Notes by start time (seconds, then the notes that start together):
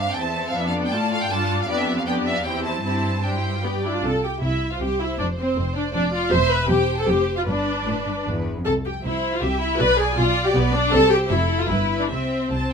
Already playing: G2 C4 D4 E5
0.00 F5
0.11 G5
0.16 E2 C4 A4 E5 A5
0.48 F5
0.55 F2 B3 D4 D5 E5
0.67 F5
0.85 G5
0.92 A2 A3 F4 A4 A5
1.12 F5
1.23 G5
1.30 G2 D4 F4 A4 D5 A5
1.61 F5
1.68 F2 B3 D4 G4 D5
1.79 E5
1.98 F5
2.06 B3 D4 G4 D5 G5
2.25 E5
2.36 F5
2.44 E2 C4 E4 G4 C5 G5
2.64 A5
2.83 G2 C4 E4 G4 C5 A5
3.23 D4 G4 C5 G5
3.34 E4
3.54 F4
3.63 B3 G4 B4 D5
3.83 D4 E4 D5
3.94 F4
4.03 C2 C3 A4 A5
4.23 G4 G5
4.41 C2 C3 E4 E5
4.71 F4 F5
4.80 C2 C3 G4 C5 G5
5.00 E4 E5
5.18 F1 F2 D4 D5
5.37 C4 C5
5.57 F1 F2
5.74 D4 D5
5.93 F1 F2 D4 D5
6.12 F4 F5
6.31 E1 E2 C5 E5 C6
6.50 B4 B5
6.68 E1 E2 G4 C5 G5
6.96 A4 A5
7.06 F1 F2 G4 G5
7.35 F4 F5
7.46 G1 G2 D4 B4 D5
7.87 G1 A2
8.07 G2
8.27 G1 E2
8.58 F2
8.65 C2 C3 A4 A5
8.86 G4 G5
9.03 C2 C3 E4 C5 E5
9.33 F4 F5
9.41 C2 C3 G4 E5 G5
9.61 E4 E5
9.79 B1 B2 B4 D5 B5
9.99 G#4 G#5
10.17 B1 B2 F4 D5 F5
10.45 G4 G5
10.54 B1 B2 B3 B4
10.73 D4 D5
10.91 C2 C3 A4 C5 A5
11.10 G4 G5
11.29 F1 F2 E4 A4 E5
11.58 F4 F5
11.68 G1 G2 E4 B4 E5
11.99 D4 D5
12.09 C2 C3 C4 C5 E5
12.51 C2 C3 A5